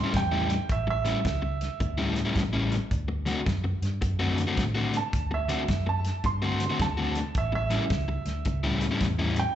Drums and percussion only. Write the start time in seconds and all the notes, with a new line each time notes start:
0.14 kick, snare, closed hi-hat
0.50 snare, closed hi-hat
0.69 kick, closed hi-hat
1.05 snare, closed hi-hat
1.25 kick, snare, closed hi-hat
1.61 snare, closed hi-hat
1.80 kick, closed hi-hat
2.16 snare, closed hi-hat
2.36 kick, snare, closed hi-hat
2.72 snare, closed hi-hat
2.91 kick, closed hi-hat
3.27 snare, closed hi-hat
3.46 kick, snare, closed hi-hat
3.83 snare, closed hi-hat
4.02 kick, closed hi-hat
4.38 snare, closed hi-hat
4.57 kick, snare, closed hi-hat
4.94 snare, closed hi-hat
5.13 kick, closed hi-hat
5.49 snare, closed hi-hat
5.68 kick, snare, closed hi-hat
6.05 snare, closed hi-hat
6.24 kick, closed hi-hat
6.60 snare, closed hi-hat
6.80 kick, snare, closed hi-hat
7.15 snare, closed hi-hat
7.35 kick, closed hi-hat
7.70 snare, closed hi-hat
7.90 kick, snare, closed hi-hat
8.26 snare, closed hi-hat
8.45 kick, closed hi-hat
8.81 snare, closed hi-hat
9.01 kick, snare, closed hi-hat
9.36 snare, closed hi-hat